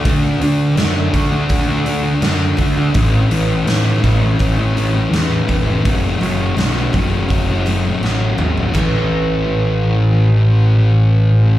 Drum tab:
CC |----------------|----------------|----------------|x---------------|
HH |o-o-o-o-o-o-o-o-|o-o-o-o-o-o-o-o-|o-o-o-o-o-o-----|----------------|
SD |----o-------o---|----o-------o---|----o-------o---|----------------|
T2 |----------------|----------------|--------------o-|----------------|
FT |----------------|----------------|---------------o|----------------|
BD |o-----o-o-----o-|o-----o-o-----o-|o-----o-o-------|o---------------|